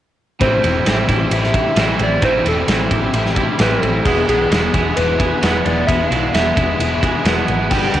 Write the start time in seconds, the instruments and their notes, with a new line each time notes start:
0.39 picked electric bass A1, overdriven electric guitar A2 E3 A3 C4 E4, clean electric guitar G3, soft synth lead C5, kick, ride
0.62 picked electric bass E1, clean electric guitar G3, overdriven electric guitar A3 C4 E4, ride
0.84 picked electric bass A1, overdriven electric guitar A2 E3 A3 C4 E4, clean electric guitar G3, snare, ride
1.07 picked electric bass A1, overdriven electric guitar A3 C4 E4, clean electric guitar G4, kick, snare, ride
1.12 clean electric guitar G3
1.30 picked electric bass A1, overdriven electric guitar E3 A3 C4 E4, soft synth lead E5, ride
1.44 snare
1.53 overdriven electric guitar A2 E3 A3 C4 E4, clean electric guitar G4, kick, ride
1.58 clean electric guitar G3
1.76 picked electric bass A1, clean electric guitar A2 G3, overdriven electric guitar E3 A3 C4 E4, snare, ride
1.99 picked electric bass A1, overdriven electric guitar A3 C4 E4, ride
2.04 soft synth lead D5
2.22 picked electric bass A1, overdriven electric guitar A2 E3 A3 C4 E4, clean electric guitar G3, soft synth lead C5, kick, ride
2.45 picked electric bass E1, clean electric guitar G3, overdriven electric guitar A3 C4 E4, soft synth lead A4, ride
2.67 picked electric bass A1, overdriven electric guitar A2 E3 A3 C4 E4, clean electric guitar G3, snare, ride
2.91 picked electric bass A1, clean electric guitar G3 G4, overdriven electric guitar A3 C4 E4, kick, ride
3.13 picked electric bass A1, overdriven electric guitar E3 A3 C4, ride
3.17 overdriven electric guitar E4
3.26 snare
3.36 overdriven electric guitar A2 E3 A3 C4 E4, clean electric guitar G4, kick, ride
3.40 clean electric guitar G3
3.58 picked electric bass A1, clean electric guitar A2 G3, overdriven electric guitar E3 A3 C4 E4, soft synth lead B4, snare, ride
3.72 soft synth lead A4
3.81 picked electric bass A1, overdriven electric guitar A3 C4 E4, ride
4.04 picked electric bass E1, clean electric guitar E2 B2, overdriven electric guitar E3 G#3 B3 E4, soft synth lead G#4, kick, crash
4.27 picked electric bass B1, clean electric guitar E3, overdriven electric guitar G#3 B3 E4, soft synth lead G#4, ride
4.50 picked electric bass E1, overdriven electric guitar E3 G#3 B3 E4, snare, ride
4.73 picked electric bass E1, clean electric guitar E3 G#4, overdriven electric guitar G#3 B3 E4, kick, ride
4.96 picked electric bass E1, overdriven electric guitar E3 G#3 B3 E4, soft synth lead B4, ride
5.19 overdriven electric guitar E3 G#3 B3 E4, clean electric guitar G#4, kick, ride
5.41 picked electric bass E1, clean electric guitar E2 B2, overdriven electric guitar E3 G#3 B3 E4, snare, ride
5.64 picked electric bass E1, overdriven electric guitar G#3 B3 E4, soft synth lead D5, ride
5.87 picked electric bass E1, clean electric guitar E2 B2, overdriven electric guitar E3 G#3 B3 E4, soft synth lead E5, kick, ride
5.99 soft synth lead F5
6.10 picked electric bass B1, clean electric guitar E3, overdriven electric guitar G#3 B3 E4, ride
6.33 picked electric bass E1, overdriven electric guitar E3 G#3 B3 E4, soft synth lead E5, snare, ride
6.56 picked electric bass E1, clean electric guitar E3 G#4, overdriven electric guitar G#3 B3 E4, kick, ride
6.79 picked electric bass E1, overdriven electric guitar E3 G#3 B3 E4, ride
7.02 overdriven electric guitar E3 G#3 B3 E4, clean electric guitar G#4, kick, ride
7.24 picked electric bass E1, clean electric guitar E2 B2, overdriven electric guitar E3 G#3 B3 E4, snare, ride
7.48 picked electric bass G#1, overdriven electric guitar G#3 B3 E4, ride
7.70 picked electric bass G1, overdriven electric guitar G2 D3 G3 B3 D4, clean electric guitar G4, soft synth lead G5, kick, crash
7.93 picked electric bass D2, clean electric guitar G3 G4, overdriven electric guitar B3 D4, ride